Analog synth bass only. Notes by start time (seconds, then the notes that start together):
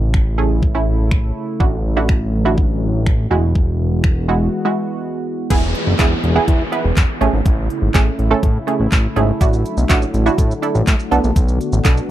Already playing: A1
1.60 A1
3.31 E1
5.50 E1
5.87 F#1
5.99 E1
6.24 E1
6.48 E2
6.85 E1
6.97 E2
7.21 A1
7.33 G#1
7.46 A1
7.82 G#1
7.95 A1
8.19 A1
8.43 A2
8.80 A1
8.92 A1
9.16 G#1
9.41 A1
9.77 B1
9.90 A1
10.14 A1
10.38 A2
10.75 A1
10.87 A2
11.12 B1
11.24 A#1
11.36 B1
11.73 A1
11.85 B1